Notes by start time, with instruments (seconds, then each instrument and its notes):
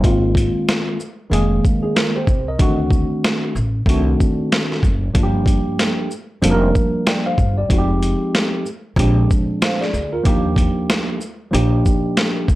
0.02 upright bass G#1, tine electric piano D#3 G#3 A#3 C4 F4, kick, closed hi-hat
0.35 kick, closed hi-hat, shaker
0.69 snare, closed hi-hat
1.00 shaker
1.30 upright bass F1, tine electric piano D#3 G#3 A#3 C4 G#4, closed hi-hat
1.65 kick, shaker
1.83 tine electric piano D#4 G#4
1.96 tine electric piano F4 A#4, snare, closed hi-hat
2.16 tine electric piano G4 C5
2.27 upright bass C2, kick, shaker
2.48 tine electric piano A#4 D#5
2.58 upright bass D2, tine electric piano D#3 A3 C4 D4 F#4, kick, closed hi-hat
2.91 kick, shaker
3.24 snare, closed hi-hat
3.55 upright bass A1, shaker
3.86 upright bass C2, tine electric piano D#3 A3 C4 D4 F#4, kick, closed hi-hat
4.20 kick, shaker
4.52 snare, closed hi-hat
4.72 snare
4.83 upright bass F#1, kick, shaker
5.14 upright bass G1, tine electric piano F3 G3 A#3 D4 F4, kick, closed hi-hat
5.23 tine electric piano G4
5.46 kick, closed hi-hat, shaker
5.79 snare, closed hi-hat
6.11 shaker
6.42 upright bass F1, tine electric piano F3 G3 A#3 D4 A4, closed hi-hat
6.51 tine electric piano A#4
6.75 kick, shaker
7.07 tine electric piano D5 G5, snare, closed hi-hat
7.26 tine electric piano C5 F5
7.38 upright bass G1, kick, shaker
7.58 tine electric piano G4 D5
7.69 upright bass F1, tine electric piano F3 G#3 C4 D#4 F#4, kick, closed hi-hat
7.78 tine electric piano G4
8.03 closed hi-hat, shaker
8.35 snare, closed hi-hat
8.66 shaker
8.96 upright bass A#1, tine electric piano F3 G#3 C4 D4 G4, kick, closed hi-hat
9.31 kick, shaker
9.62 tine electric piano C5 F5, snare, closed hi-hat
9.81 tine electric piano G#4 D5, snare
9.94 upright bass D2, shaker
10.13 tine electric piano F4 A#4
10.23 upright bass D#2, tine electric piano F3 A#3 D4 D#4 G4, kick, closed hi-hat
10.56 kick, closed hi-hat, shaker
10.90 snare, closed hi-hat
11.21 shaker
11.51 upright bass A#1, tine electric piano F3 A#3 D4 D#4 G4, closed hi-hat
11.86 kick, shaker
12.17 snare, closed hi-hat
12.48 upright bass D2, kick, shaker